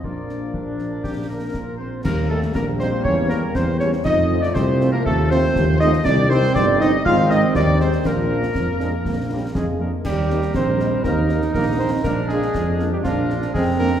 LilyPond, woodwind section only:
\new Staff \with { instrumentName = "Woodwind section" } { \time 2/4 \key bes \major \tempo 4 = 120 << { <f' d''>4 r4 | r8 bes'4 c''8 | bes'8 a'8 bes'8 c''8 | des''8 bes'8 c''8 des''8 |
ees''8. d''16 c''8. bes'16 | a'8 c''4 ees''8 | \key ees \major d''8 c''8 d''8 ees''8 | f''8 ees''8 d''8 c''8 |
bes'2~ | bes'4. r8 | <ees' bes'>2 | <ees' bes'>4 <ees' bes'>4 |
<d' bes'>2 | <d' bes'>4 <d' bes'>4 | } \\ { r4 d'4 | g'8 r8 f'4 | r2 | r2 |
r2 | r2 | r2 | r2 |
r2 | r2 | r2 | r2 |
r2 | r2 | } >> }